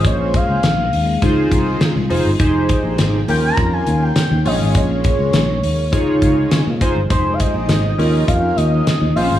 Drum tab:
HH |xxxoxxxo|xxxoxxxo|xxxoxxxx|xxxoxxxo|
SD |--o---o-|--o---o-|--o---o-|--o---o-|
BD |oo--oo--|oo--o---|oo--oo-o|oo--o---|